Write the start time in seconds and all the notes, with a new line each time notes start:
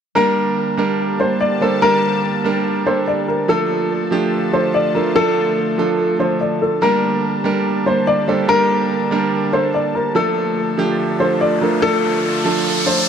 0.15 D3 G3 A#3 D4 G4 A#4 A5
0.77 G3 A#3 D4 A#4
1.19 G3 A#3 D4 C5
1.41 D5
1.61 G3 A#3 D4 A4 C5
1.82 G3 A#3 D4 A#4
2.44 G3 A#3 D4 A#4
2.86 G3 A#3 D4 A4 C5
3.07 D5
3.28 A#4
3.48 D3 F3 A3 D4 F4 A4 A5
4.11 F3 A3 D4 G4
4.52 F3 A3 D4 A4 C5
4.74 D5
4.95 F3 A3 D4 A4 A#4
5.15 F3 A3 D4 A4
5.78 F3 A3 D4 A4
6.19 F3 A3 D4 A4 C5
6.41 D5
6.62 A4
6.82 G3 A#3 D4 G4 A#4
7.44 G3 A#3 D4 A#4
7.86 G3 A#3 D4 C5
8.07 D5
8.28 G3 A#3 D4 A4 C5
8.48 G3 A#3 D4 A#4
9.11 G3 A#3 D4 A#4
9.52 G3 A#3 D4 A4 C5
9.74 D5
9.95 A#4
10.15 F3 A3 D4 F4 A4, riser
10.78 F3 A3 D4 G4
11.19 F3 A3 D4 A4 C5
11.41 D5
11.61 F3 A3 D4 A4 A#4
11.82 F3 A3 D4 A4
12.45 F3 A3 D4 A4
12.86 F3 A3 D4 A4 C5